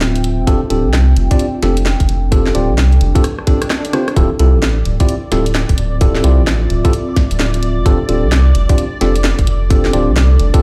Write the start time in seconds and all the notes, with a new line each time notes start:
Already playing: D1 C4 F4 E5 G5
0.01 snare
0.16 closed hi-hat
0.24 D4, closed hi-hat
0.39 F1
0.47 F1 C4 D4 F4 G4 A4, kick, closed hi-hat
0.53 A4
0.70 D1 C4 D4 F4 G4 A4, closed hi-hat
0.85 C2
0.93 snare
1.17 F1, closed hi-hat
1.31 C4 D4 F4 G4 D5, kick, closed hi-hat
1.39 closed hi-hat
1.63 F1 C4 D4 F4 G4 A4, snare, closed hi-hat
1.77 closed hi-hat
1.86 snare
2.00 F1, kick, closed hi-hat
2.09 F1, closed hi-hat
2.32 C4 D4 F4 G4 A4, kick, closed hi-hat
2.46 snare
2.55 D1 C4 D4 F4 G4 D5, closed hi-hat
2.70 C2
2.78 snare
2.92 closed hi-hat
3.01 F1, closed hi-hat
3.15 C4 D4 F4 G4 A4, kick, closed hi-hat
3.24 cross-stick, closed hi-hat, swell
3.39 cross-stick
3.47 C4 D4 F4 G4 A4, kick, closed hi-hat
3.62 cross-stick, closed hi-hat
3.70 cross-stick, snare
3.85 closed hi-hat
3.93 C4 D4 F4 G4 C5, cross-stick, closed hi-hat
4.08 cross-stick, closed hi-hat
4.16 D1 C4 E4 F4 G4 A4 D5, kick, closed hi-hat
4.39 C2 C4 E4 F4 G4 A4, closed hi-hat
4.52 A1 F4
4.62 snare
4.70 E5
4.85 D1, closed hi-hat
5.00 C4 E4 F4 G4 D5, kick, closed hi-hat
5.09 closed hi-hat
5.32 D1 C4 E4 F4 G4 A4, snare, closed hi-hat
5.46 closed hi-hat
5.55 snare
5.69 D1, kick, closed hi-hat
5.78 D1, closed hi-hat
6.01 C4 E4 F4 G4 A4, kick, closed hi-hat
6.15 snare
6.24 C2 C4 E4 F4 G4 D5, closed hi-hat
6.39 A1
6.47 snare
6.70 D1, closed hi-hat
6.85 C4 E4 F4 G4 A4, kick, closed hi-hat
6.93 closed hi-hat
7.16 kick, snare, closed hi-hat
7.31 D1, closed hi-hat
7.40 snare
7.54 closed hi-hat
7.63 D4, closed hi-hat
7.77 F1
7.83 F1 C4 D4 F4 G4 A4, kick, closed hi-hat
8.09 D1 C4 D4 F4 G4 A4, closed hi-hat
8.23 C2
8.32 snare
8.55 F1, closed hi-hat
8.69 C4 D4 F4 G4 D5, kick, closed hi-hat
8.78 closed hi-hat
9.01 F1 C4 D4 F4 G4 A4, snare, closed hi-hat
9.16 closed hi-hat
9.24 snare
9.39 F1, kick, closed hi-hat
9.47 F1, closed hi-hat
9.70 C4 D4 F4 G4 A4, kick, closed hi-hat
9.85 snare
9.93 D1 C4 D4 F4 G4 D5, closed hi-hat
10.08 C2
10.16 snare
10.40 F1, closed hi-hat
10.54 C4 D4 F4 G4 A4, kick, closed hi-hat